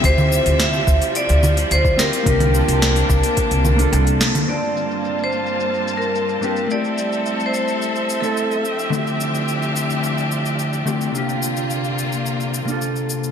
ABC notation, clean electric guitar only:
X:1
M:4/4
L:1/16
Q:1/4=108
K:Gdor
V:1 name="Clean electric guitar"
[CEFG]12- [CEFG]2 [CEFG]2 | [B,DFG]8- [B,DFG]3 [B,DFA]4- [B,DFA] | [G,,B,CDFa]12- [G,,B,CDFa]2 [G,,B,CDFG]2 | [A,CEG]8- [A,CEG]3 [A,CEA]3 z2 |
[D,A,CEFG]12- [D,A,CEFG]2 [D,A,CEFG]2 | [C,B,DFG]8- [C,B,DFG]3 [C,B,DFA]4- [C,B,DFA] |]